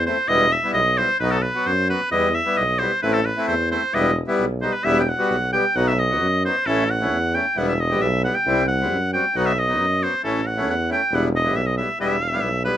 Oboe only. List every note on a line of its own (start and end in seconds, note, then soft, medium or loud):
0.07 0.29 C5 loud
0.28 0.54 D#5 loud
0.52 0.73 E5 loud
0.74 0.99 D#5 loud
0.98 1.19 C5 loud
1.20 1.33 B4 medium
1.32 1.44 A4 medium
1.42 1.68 B4 medium
1.66 1.89 C5 loud
1.90 2.10 B4 medium
2.12 2.36 D#5 medium
2.34 2.58 E5 medium
2.57 2.80 D#5 medium
2.79 3.02 C5 medium
3.02 3.15 B4 medium
3.14 3.27 A4 medium
3.26 3.47 B4 medium
3.48 3.70 C5 medium
3.71 3.96 C5 medium
3.94 4.17 D#5 loud
4.62 4.74 C5 medium
4.73 4.86 B4 medium
4.84 5.00 E5 loud
5.00 5.10 G5 medium
5.09 5.52 F#5 loud
5.53 5.78 G5 loud
5.76 5.89 F#5 loud
5.88 6.00 E5 medium
5.99 6.44 D#5 loud
6.45 6.68 C5 loud
6.66 6.92 A4 medium
6.90 7.36 F#5 loud
7.34 7.59 G5 loud
7.58 7.68 F#5 medium
7.68 7.81 E5 medium
7.80 8.03 D#5 medium
8.01 8.24 E5 loud
8.24 8.36 F#5 loud
8.35 8.67 G5 loud
8.68 9.10 F#5 loud
9.13 9.38 G5 medium
9.37 9.48 F#5 medium
9.46 9.60 E5 medium
9.59 10.05 D#5 loud
10.03 10.24 C5 medium
10.24 10.48 A4 medium
10.46 10.69 F#5 medium
10.70 10.90 F#5 medium
10.92 11.16 G5 loud
11.15 11.25 F#5 medium
11.36 11.57 D#5 loud
11.56 11.68 E5 medium
11.66 11.77 D#5 medium
11.78 11.98 E5 medium
12.01 12.62 E5 medium
12.65 12.77 B4 medium